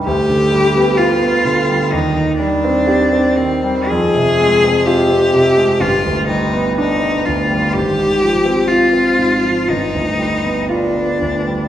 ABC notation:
X:1
M:4/4
L:1/16
Q:1/4=62
K:Gphr
V:1 name="Cello"
G4 F4 E2 D4 C2 | A4 G4 F2 E2 E2 F2 | G4 F4 E4 D4 |]
V:2 name="Grand piano" clef=bass
D,, D, G, =B, F B, D, G, E,, E, G, C G C E, G, | F,, C, A, C F C C, A, G,,, D,, G, =B, D B, D,, G, | A,,, A,, F, C F C A,, F, G,,, D,, G, =B, F B, D,, G, |]